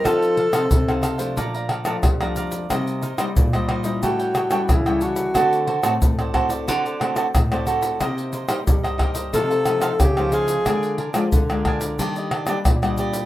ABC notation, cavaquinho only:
X:1
M:4/4
L:1/16
Q:1/4=90
K:Dphr
V:1 name="Cavaquinho"
[EAcf]2 [EAcf] [EAcf] z [Acf] [EAcf] [Acf] [Adfb] [dfb] [Adfb] [Adfb] z [dfb] [dfb]2 | [EBce]2 [EBce] [EBce] z [Bce] [EBce] [Bce] [GA^cg] [Acg] [GAcg] [GAcg] z [Acg] [Ac]2 | [^FAcd]2 [FAcd] [FAcd] z [Acd] [FAcd] [Acd] [FAcd] [Acd] [FAcd] [FAcd] z [Acd] [FAcd]2 | [EBce]2 [EBce] [EBce] z [Bce] [EBce] [Bce] [EAcf] [Acf] [EAcf] [EAcf] z [Acf] [Ecf]2 |
[DBd_a]2 [DBda] [DBda] z [Bda] [DBda] [Bda] [DGde] [Gde] [DGde] [DGde] z [Gde] [Gde]2 |]